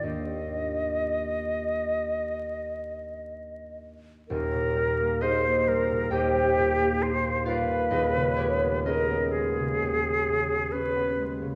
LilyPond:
<<
  \new Staff \with { instrumentName = "Flute" } { \time 4/4 \key ees \major \tempo 4 = 64 ees''2.~ ees''8 r8 | bes'4 c''8 bes'8 g'4 c''8 ces''8~ | ces''4 bes'8 aes'4. ces''8 r8 | }
  \new Staff \with { instrumentName = "Harp" } { \time 4/4 \key ees \major r1 | r4 <aes' c'' ees''>4 <g' c'' ees'' g''>4. <f' bes' d'' f''>8 | <aes' ces'' ees''>8 <g' bes' des''>8 <aes' ces'' ees''>2. | }
  \new Staff \with { instrumentName = "Harp" } { \clef bass \time 4/4 \key ees \major <ees, bes d' ees' f' g'>1 | <ees,, ees,>16 bes,16 g16 bes16 ees'16 bes16 g16 bes,16 ees,16 g16 bes,16 bes16 ees'16 bes16 g16 bes,16 | <ees,, ees,>16 des16 aes16 ces'16 des'16 ces'16 aes16 des16 ees,16 aes16 des16 ces'16 des'16 ces'16 aes16 des16 | }
>>